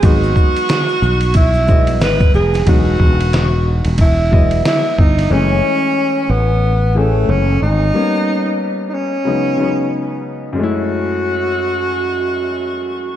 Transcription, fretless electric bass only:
X:1
M:4/4
L:1/16
Q:"Swing 16ths" 1/4=91
K:F#dor
V:1 name="Fretless electric bass" clef=bass
G,,,2 z4 B,,,6 G,,,2 ^E,,,2 | E,,,2 E,,,4- E,,, E,,,4- E,,, z2 =G,,,2 | F,,,2 z4 A,,,6 F,,,2 G,,,2 | z16 |
z16 |]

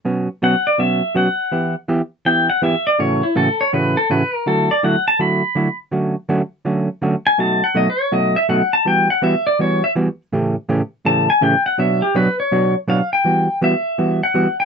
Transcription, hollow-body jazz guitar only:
X:1
M:4/4
L:1/16
Q:"Swing" 1/4=164
K:D
V:1 name="Hollow-body jazz guitar"
[B,,F,B,CF]2 z2 [B,,F,B,CF] z3 [B,,F,B,CF]2 z2 [B,,F,B,CF] z3 | [E,B,EG]2 z2 [E,B,EG] z3 [E,B,EG]2 z2 [E,B,EG] z3 | [A,,C,E,A,CF]2 z2 [A,,C,E,A,CF] z3 [A,,C,E,A,CF]2 z2 [A,,C,E,A,CF] z3 | [D,F,A,EF]2 z2 [D,F,A,EF] z3 [D,F,A,EF]2 z2 [D,F,A,EF] z3 |
[D,F,A,CF]2 z2 [D,F,A,CF] z3 [D,F,A,CF]2 z2 [D,F,A,CF] z3 | [B,,F,A,^DF]2 z2 [B,,F,A,DF] z3 [B,,F,A,DF]2 z2 [B,,F,A,DF] z3 | [E,G,B,F]2 z2 [E,G,B,F] z3 [E,G,B,F]2 z2 [E,G,B,F] z3 | [A,,C,E,A,CG]2 z2 [A,,C,E,A,CG] z3 [A,,C,E,A,CG]2 z2 [A,,C,E,A,CG] z3 |
[B,,F,B,DFc]2 z2 [B,,F,B,DFc] z3 [B,,F,B,DFc]2 z2 [B,,F,B,DFc] z3 | [E,G,B,F]2 z2 [E,G,B,F] z3 [E,G,B,F]2 z2 [E,G,B,F] z3 |]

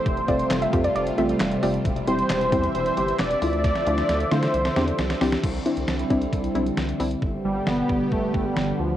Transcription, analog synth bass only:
X:1
M:4/4
L:1/16
Q:1/4=134
K:C
V:1 name="Analog synth bass" clef=bass
F,,,2 F,,,2 F,,,2 F,,2 F,,,2 A,,,2 F,,,2 F,,,2 | E,,,2 E,,,2 E,,,2 E,,2 E,,,2 G,,,2 E,,,2 D,,2- | D,,2 D,,2 D,,2 D,2 C,,2 E,,2 C,,2 C,,2 | C,,2 z C,, C,,2 C,,2 C,,2 B,,,2 C,,2 C,,2 |
G,,,2 G,,,2 G,,,2 G,,,2 G,,,2 G,,,2 G,,,2 D,,2 |]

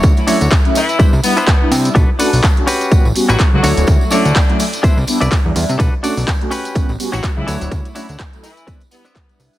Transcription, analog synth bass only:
X:1
M:4/4
L:1/16
Q:"Swing 16ths" 1/4=125
K:D
V:1 name="Analog synth bass" clef=bass
D,, z2 D,, z4 z =C,, z4 =C, z | B,,, z2 B,,, z4 A,,, A,,, z A,,, z C,, D,, D,,, | D,, z2 D,, z4 z =C,, z C,, z E,, E,, =C, | B,,, z2 B,,, z4 A,,, A,,, z A,,, z C,, D,, D,,, |
D,, z2 D,, z8 z2 =C,, z |]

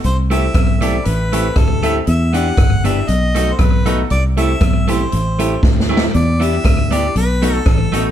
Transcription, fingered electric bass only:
X:1
M:4/4
L:1/8
Q:"Swing" 1/4=118
K:Clyd
V:1 name="Fingered electric bass" clef=bass
C,,2 B,,,2 A,,,2 D,,2 | E,,2 G,,,2 B,,,2 B,,,2 | C,,2 B,,,2 A,,,2 D,,2 | E,,2 D,,2 B,,,2 A,,,2 |]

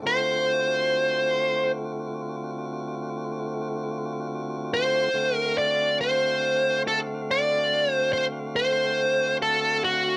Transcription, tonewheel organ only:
X:1
M:12/8
L:1/8
Q:3/8=47
K:Dphr
V:1 name="Tonewheel organ"
[D,A,C^E^F]12 | [D,A,C^F^e]12 |]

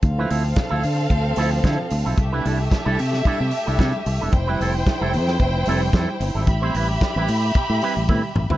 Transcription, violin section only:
X:1
M:4/4
L:1/8
Q:1/4=112
K:Ddor
V:1 name="Violin section"
[CAf]8 | [A,Ge]8 | [Ecg]8 | [Geb]8 |]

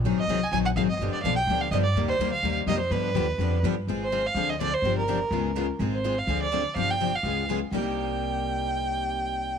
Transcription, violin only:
X:1
M:4/4
L:1/8
Q:"Swing" 1/4=250
K:Cm
V:1 name="Violin"
z e2 a a _g f e | z d f g2 f e d | z c2 f2 z e c | =B6 z2 |
z c2 f2 e d c- | c B6 z | z c2 f2 d3 | f g2 f3 z2 |
g8- | g8 |]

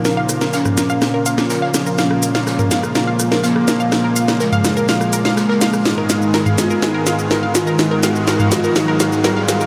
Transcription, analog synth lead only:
X:1
M:4/4
L:1/8
Q:1/4=124
K:Bbphr
V:1 name="Analog synth lead"
E2 D6 | D3 B,3 B,2- | B,2 A,6 | E3 F E3 F |
E3 F E3 F |]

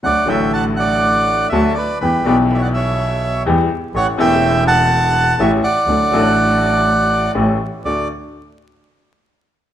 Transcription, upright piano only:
X:1
M:4/4
L:1/8
Q:1/4=124
K:D
V:1 name="Upright piano" clef=bass
[D,,D,F,A,F] [A,,,A,,D,F,A,F]4- [A,,,A,,D,F,A,F] [D,,D,F,A,F] z | [E,,E,G,B,G] [B,,,B,,E,G,B,G]4- [B,,,B,,E,G,B,G] [E,,E,G,B,G] z | [A,,,A,,E,A,CG] [E,,,E,,E,A,CG]4- [E,,,E,,E,A,CG] [A,,,A,,E,A,CG] z | [D,,D,F,A,DA] [A,,,A,,F,A,DA]4- [A,,,A,,F,A,DA] [A,,,A,,E,A,CG] z |
[D,,A,DF] z6 z |]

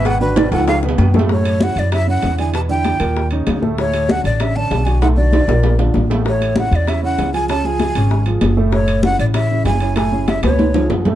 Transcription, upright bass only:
X:1
M:4/4
L:1/8
Q:1/4=194
K:F#m
V:1 name="Upright bass" clef=bass
G,,,3 C,,3 F,,2- | F,,3 F,,3 E,,2- | E,,3 ^D,,3 =D,,2- | D,,3 A,,,3 B,,,2- |
B,,,3 ^A,,,3 =A,,,2- | A,,,3 E,,3 C,,2- | C,,3 G,,,3 F,,,2- | F,,,3 A,,,3 F,,,2- |
F,,,3 C,,3 F,,2 |]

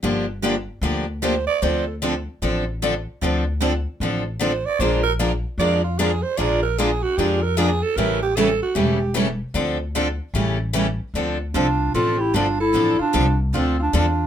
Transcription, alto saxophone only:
X:1
M:4/4
L:1/8
Q:"Swing" 1/4=151
K:Dm
V:1 name="Alto saxophone"
z6 c d | c A z6 | z6 c d | c B z2 d F _A c |
d B _A ^F G B A =A | B G A ^F G2 z2 | z8 | z2 F2 A G F A- |
A F2 z F F F2 |]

